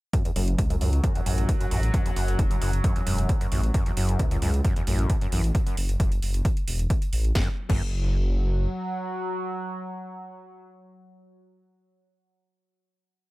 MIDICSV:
0, 0, Header, 1, 5, 480
1, 0, Start_track
1, 0, Key_signature, 3, "minor"
1, 0, Tempo, 451128
1, 144, Time_signature, 4, 2, 24, 8
1, 14155, End_track
2, 0, Start_track
2, 0, Title_t, "Synth drone"
2, 0, Program_c, 0, 95
2, 144, Note_on_c, 0, 54, 78
2, 5954, Note_off_c, 0, 54, 0
2, 7823, Note_on_c, 0, 54, 81
2, 11547, Note_off_c, 0, 54, 0
2, 14155, End_track
3, 0, Start_track
3, 0, Title_t, "Acid bass"
3, 0, Program_c, 1, 38
3, 143, Note_on_c, 1, 42, 79
3, 247, Note_off_c, 1, 42, 0
3, 269, Note_on_c, 1, 40, 77
3, 332, Note_off_c, 1, 40, 0
3, 383, Note_on_c, 1, 42, 76
3, 623, Note_on_c, 1, 45, 83
3, 639, Note_off_c, 1, 42, 0
3, 692, Note_off_c, 1, 45, 0
3, 748, Note_on_c, 1, 42, 75
3, 812, Note_off_c, 1, 42, 0
3, 862, Note_on_c, 1, 42, 77
3, 967, Note_off_c, 1, 42, 0
3, 1103, Note_on_c, 1, 42, 81
3, 1207, Note_off_c, 1, 42, 0
3, 1228, Note_on_c, 1, 40, 77
3, 1291, Note_off_c, 1, 40, 0
3, 1343, Note_on_c, 1, 42, 75
3, 1583, Note_on_c, 1, 45, 79
3, 1599, Note_off_c, 1, 42, 0
3, 1652, Note_off_c, 1, 45, 0
3, 1709, Note_on_c, 1, 42, 75
3, 1772, Note_off_c, 1, 42, 0
3, 1823, Note_on_c, 1, 42, 74
3, 1927, Note_off_c, 1, 42, 0
3, 2063, Note_on_c, 1, 42, 81
3, 2167, Note_off_c, 1, 42, 0
3, 2189, Note_on_c, 1, 40, 76
3, 2252, Note_off_c, 1, 40, 0
3, 2303, Note_on_c, 1, 42, 76
3, 2544, Note_on_c, 1, 45, 82
3, 2560, Note_off_c, 1, 42, 0
3, 2613, Note_off_c, 1, 45, 0
3, 2669, Note_on_c, 1, 42, 75
3, 2732, Note_off_c, 1, 42, 0
3, 2783, Note_on_c, 1, 42, 79
3, 2887, Note_off_c, 1, 42, 0
3, 3023, Note_on_c, 1, 42, 85
3, 3127, Note_off_c, 1, 42, 0
3, 3149, Note_on_c, 1, 40, 76
3, 3212, Note_off_c, 1, 40, 0
3, 3263, Note_on_c, 1, 42, 79
3, 3504, Note_on_c, 1, 45, 81
3, 3519, Note_off_c, 1, 42, 0
3, 3572, Note_off_c, 1, 45, 0
3, 3629, Note_on_c, 1, 42, 76
3, 3692, Note_off_c, 1, 42, 0
3, 3743, Note_on_c, 1, 42, 78
3, 3847, Note_off_c, 1, 42, 0
3, 3984, Note_on_c, 1, 42, 81
3, 4087, Note_off_c, 1, 42, 0
3, 4109, Note_on_c, 1, 40, 78
3, 4172, Note_off_c, 1, 40, 0
3, 4223, Note_on_c, 1, 42, 76
3, 4463, Note_on_c, 1, 45, 86
3, 4479, Note_off_c, 1, 42, 0
3, 4532, Note_off_c, 1, 45, 0
3, 4589, Note_on_c, 1, 42, 77
3, 4652, Note_off_c, 1, 42, 0
3, 4703, Note_on_c, 1, 42, 81
3, 4807, Note_off_c, 1, 42, 0
3, 4943, Note_on_c, 1, 42, 84
3, 5047, Note_off_c, 1, 42, 0
3, 5069, Note_on_c, 1, 40, 78
3, 5132, Note_off_c, 1, 40, 0
3, 5183, Note_on_c, 1, 42, 77
3, 5423, Note_on_c, 1, 45, 80
3, 5439, Note_off_c, 1, 42, 0
3, 5492, Note_off_c, 1, 45, 0
3, 5549, Note_on_c, 1, 42, 74
3, 5612, Note_off_c, 1, 42, 0
3, 5663, Note_on_c, 1, 42, 75
3, 5767, Note_off_c, 1, 42, 0
3, 7823, Note_on_c, 1, 42, 93
3, 7961, Note_off_c, 1, 42, 0
3, 8189, Note_on_c, 1, 42, 96
3, 8319, Note_off_c, 1, 42, 0
3, 14155, End_track
4, 0, Start_track
4, 0, Title_t, "Detuned saw bass"
4, 0, Program_c, 2, 39
4, 383, Note_on_c, 2, 30, 100
4, 586, Note_off_c, 2, 30, 0
4, 623, Note_on_c, 2, 37, 84
4, 826, Note_off_c, 2, 37, 0
4, 863, Note_on_c, 2, 37, 94
4, 1066, Note_off_c, 2, 37, 0
4, 1343, Note_on_c, 2, 33, 86
4, 1546, Note_off_c, 2, 33, 0
4, 1823, Note_on_c, 2, 33, 78
4, 2026, Note_off_c, 2, 33, 0
4, 2303, Note_on_c, 2, 30, 84
4, 2506, Note_off_c, 2, 30, 0
4, 2543, Note_on_c, 2, 30, 102
4, 2746, Note_off_c, 2, 30, 0
4, 2783, Note_on_c, 2, 30, 87
4, 2986, Note_off_c, 2, 30, 0
4, 3263, Note_on_c, 2, 28, 97
4, 3466, Note_off_c, 2, 28, 0
4, 3743, Note_on_c, 2, 33, 90
4, 3946, Note_off_c, 2, 33, 0
4, 4223, Note_on_c, 2, 30, 98
4, 4426, Note_off_c, 2, 30, 0
4, 4464, Note_on_c, 2, 37, 86
4, 4666, Note_off_c, 2, 37, 0
4, 4703, Note_on_c, 2, 37, 99
4, 4906, Note_off_c, 2, 37, 0
4, 5183, Note_on_c, 2, 33, 84
4, 5386, Note_off_c, 2, 33, 0
4, 5663, Note_on_c, 2, 33, 79
4, 5866, Note_off_c, 2, 33, 0
4, 6143, Note_on_c, 2, 30, 84
4, 6346, Note_off_c, 2, 30, 0
4, 6383, Note_on_c, 2, 30, 101
4, 6586, Note_off_c, 2, 30, 0
4, 6624, Note_on_c, 2, 30, 89
4, 6826, Note_off_c, 2, 30, 0
4, 7103, Note_on_c, 2, 28, 99
4, 7306, Note_off_c, 2, 28, 0
4, 7583, Note_on_c, 2, 33, 91
4, 7786, Note_off_c, 2, 33, 0
4, 7823, Note_on_c, 2, 30, 99
4, 7961, Note_off_c, 2, 30, 0
4, 8189, Note_on_c, 2, 30, 98
4, 9221, Note_off_c, 2, 30, 0
4, 14155, End_track
5, 0, Start_track
5, 0, Title_t, "Drums"
5, 143, Note_on_c, 9, 36, 113
5, 143, Note_on_c, 9, 42, 89
5, 249, Note_off_c, 9, 42, 0
5, 250, Note_off_c, 9, 36, 0
5, 268, Note_on_c, 9, 42, 53
5, 375, Note_off_c, 9, 42, 0
5, 382, Note_on_c, 9, 46, 104
5, 489, Note_off_c, 9, 46, 0
5, 508, Note_on_c, 9, 42, 55
5, 615, Note_off_c, 9, 42, 0
5, 623, Note_on_c, 9, 36, 115
5, 623, Note_on_c, 9, 42, 99
5, 729, Note_off_c, 9, 36, 0
5, 729, Note_off_c, 9, 42, 0
5, 748, Note_on_c, 9, 42, 51
5, 855, Note_off_c, 9, 42, 0
5, 863, Note_on_c, 9, 46, 92
5, 969, Note_off_c, 9, 46, 0
5, 988, Note_on_c, 9, 42, 54
5, 1095, Note_off_c, 9, 42, 0
5, 1103, Note_on_c, 9, 36, 118
5, 1103, Note_on_c, 9, 42, 95
5, 1209, Note_off_c, 9, 36, 0
5, 1209, Note_off_c, 9, 42, 0
5, 1228, Note_on_c, 9, 42, 55
5, 1335, Note_off_c, 9, 42, 0
5, 1343, Note_on_c, 9, 46, 105
5, 1449, Note_off_c, 9, 46, 0
5, 1469, Note_on_c, 9, 42, 55
5, 1575, Note_off_c, 9, 42, 0
5, 1583, Note_on_c, 9, 36, 113
5, 1583, Note_on_c, 9, 42, 91
5, 1689, Note_off_c, 9, 42, 0
5, 1690, Note_off_c, 9, 36, 0
5, 1709, Note_on_c, 9, 42, 55
5, 1815, Note_off_c, 9, 42, 0
5, 1823, Note_on_c, 9, 46, 93
5, 1929, Note_off_c, 9, 46, 0
5, 1949, Note_on_c, 9, 42, 54
5, 2055, Note_off_c, 9, 42, 0
5, 2063, Note_on_c, 9, 36, 116
5, 2063, Note_on_c, 9, 42, 90
5, 2169, Note_off_c, 9, 42, 0
5, 2170, Note_off_c, 9, 36, 0
5, 2189, Note_on_c, 9, 42, 54
5, 2295, Note_off_c, 9, 42, 0
5, 2303, Note_on_c, 9, 46, 107
5, 2409, Note_off_c, 9, 46, 0
5, 2429, Note_on_c, 9, 42, 56
5, 2535, Note_off_c, 9, 42, 0
5, 2543, Note_on_c, 9, 36, 117
5, 2543, Note_on_c, 9, 42, 99
5, 2649, Note_off_c, 9, 42, 0
5, 2650, Note_off_c, 9, 36, 0
5, 2668, Note_on_c, 9, 42, 53
5, 2774, Note_off_c, 9, 42, 0
5, 2783, Note_on_c, 9, 46, 99
5, 2889, Note_off_c, 9, 46, 0
5, 2909, Note_on_c, 9, 42, 54
5, 3015, Note_off_c, 9, 42, 0
5, 3023, Note_on_c, 9, 36, 118
5, 3023, Note_on_c, 9, 42, 93
5, 3129, Note_off_c, 9, 42, 0
5, 3130, Note_off_c, 9, 36, 0
5, 3148, Note_on_c, 9, 42, 55
5, 3254, Note_off_c, 9, 42, 0
5, 3262, Note_on_c, 9, 46, 107
5, 3369, Note_off_c, 9, 46, 0
5, 3388, Note_on_c, 9, 42, 56
5, 3495, Note_off_c, 9, 42, 0
5, 3502, Note_on_c, 9, 42, 92
5, 3503, Note_on_c, 9, 36, 118
5, 3609, Note_off_c, 9, 42, 0
5, 3610, Note_off_c, 9, 36, 0
5, 3628, Note_on_c, 9, 42, 54
5, 3735, Note_off_c, 9, 42, 0
5, 3742, Note_on_c, 9, 46, 95
5, 3848, Note_off_c, 9, 46, 0
5, 3868, Note_on_c, 9, 42, 54
5, 3974, Note_off_c, 9, 42, 0
5, 3983, Note_on_c, 9, 36, 122
5, 3983, Note_on_c, 9, 42, 91
5, 4089, Note_off_c, 9, 42, 0
5, 4090, Note_off_c, 9, 36, 0
5, 4108, Note_on_c, 9, 42, 53
5, 4215, Note_off_c, 9, 42, 0
5, 4223, Note_on_c, 9, 46, 108
5, 4329, Note_off_c, 9, 46, 0
5, 4349, Note_on_c, 9, 42, 56
5, 4455, Note_off_c, 9, 42, 0
5, 4463, Note_on_c, 9, 36, 120
5, 4463, Note_on_c, 9, 42, 97
5, 4569, Note_off_c, 9, 42, 0
5, 4570, Note_off_c, 9, 36, 0
5, 4588, Note_on_c, 9, 42, 52
5, 4695, Note_off_c, 9, 42, 0
5, 4703, Note_on_c, 9, 46, 101
5, 4809, Note_off_c, 9, 46, 0
5, 4829, Note_on_c, 9, 42, 53
5, 4935, Note_off_c, 9, 42, 0
5, 4943, Note_on_c, 9, 36, 121
5, 4943, Note_on_c, 9, 42, 94
5, 5049, Note_off_c, 9, 42, 0
5, 5050, Note_off_c, 9, 36, 0
5, 5068, Note_on_c, 9, 42, 53
5, 5175, Note_off_c, 9, 42, 0
5, 5182, Note_on_c, 9, 46, 111
5, 5289, Note_off_c, 9, 46, 0
5, 5308, Note_on_c, 9, 42, 55
5, 5415, Note_off_c, 9, 42, 0
5, 5422, Note_on_c, 9, 42, 95
5, 5423, Note_on_c, 9, 36, 119
5, 5529, Note_off_c, 9, 42, 0
5, 5530, Note_off_c, 9, 36, 0
5, 5548, Note_on_c, 9, 42, 55
5, 5655, Note_off_c, 9, 42, 0
5, 5662, Note_on_c, 9, 46, 97
5, 5769, Note_off_c, 9, 46, 0
5, 5788, Note_on_c, 9, 42, 53
5, 5894, Note_off_c, 9, 42, 0
5, 5903, Note_on_c, 9, 36, 122
5, 5903, Note_on_c, 9, 42, 89
5, 6009, Note_off_c, 9, 42, 0
5, 6010, Note_off_c, 9, 36, 0
5, 6028, Note_on_c, 9, 42, 52
5, 6135, Note_off_c, 9, 42, 0
5, 6143, Note_on_c, 9, 46, 113
5, 6249, Note_off_c, 9, 46, 0
5, 6268, Note_on_c, 9, 42, 53
5, 6375, Note_off_c, 9, 42, 0
5, 6383, Note_on_c, 9, 36, 120
5, 6383, Note_on_c, 9, 42, 93
5, 6489, Note_off_c, 9, 42, 0
5, 6490, Note_off_c, 9, 36, 0
5, 6509, Note_on_c, 9, 42, 50
5, 6615, Note_off_c, 9, 42, 0
5, 6623, Note_on_c, 9, 46, 99
5, 6729, Note_off_c, 9, 46, 0
5, 6749, Note_on_c, 9, 42, 51
5, 6855, Note_off_c, 9, 42, 0
5, 6863, Note_on_c, 9, 36, 124
5, 6863, Note_on_c, 9, 42, 93
5, 6969, Note_off_c, 9, 42, 0
5, 6970, Note_off_c, 9, 36, 0
5, 6989, Note_on_c, 9, 42, 53
5, 7095, Note_off_c, 9, 42, 0
5, 7103, Note_on_c, 9, 46, 109
5, 7209, Note_off_c, 9, 46, 0
5, 7229, Note_on_c, 9, 42, 53
5, 7335, Note_off_c, 9, 42, 0
5, 7343, Note_on_c, 9, 36, 121
5, 7343, Note_on_c, 9, 42, 89
5, 7449, Note_off_c, 9, 42, 0
5, 7450, Note_off_c, 9, 36, 0
5, 7468, Note_on_c, 9, 42, 53
5, 7575, Note_off_c, 9, 42, 0
5, 7583, Note_on_c, 9, 46, 96
5, 7689, Note_off_c, 9, 46, 0
5, 7709, Note_on_c, 9, 42, 50
5, 7815, Note_off_c, 9, 42, 0
5, 7823, Note_on_c, 9, 36, 114
5, 7823, Note_on_c, 9, 38, 84
5, 7929, Note_off_c, 9, 38, 0
5, 7930, Note_off_c, 9, 36, 0
5, 8188, Note_on_c, 9, 49, 88
5, 8189, Note_on_c, 9, 36, 114
5, 8295, Note_off_c, 9, 49, 0
5, 8296, Note_off_c, 9, 36, 0
5, 14155, End_track
0, 0, End_of_file